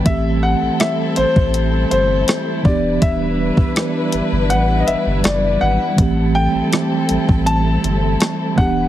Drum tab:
HH |x---x-x-x-x-x---|x---x-x-x-x-x---|x---x-x-x-x-x---|
SD |----r-------r---|----r-------r---|----r-------r---|
BD |o------o------o-|o--o------------|o------o------o-|